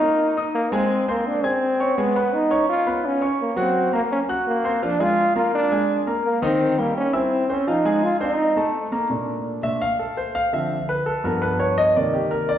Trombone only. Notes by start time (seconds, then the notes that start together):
Already playing: D#4
0.55 A#3
0.73 C4
1.09 A#3
1.27 D4
1.45 C4
1.98 B3
2.33 D#4
2.69 F4
3.05 C#4
3.41 A#3
3.59 C4
3.95 A#3
4.12 C#4
4.48 A#3
4.83 D4
5.01 F4
5.36 F4
5.55 D4
6.26 A#3
6.44 C4
6.80 A#3
6.97 C#4
7.15 C4
7.51 C#4
7.68 D#4
8.04 F4
8.21 D#4